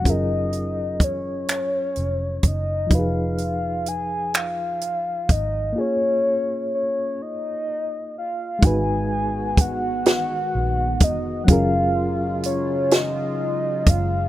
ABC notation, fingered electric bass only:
X:1
M:6/8
L:1/8
Q:3/8=42
K:Ebm
V:1 name="Fingered electric bass" clef=bass
G,,,4 F,,, G,,, | F,,,4- F,,, A,,, | z6 | A,,,4 B,,, F,,, |
G,,,4- G,,, G,,, |]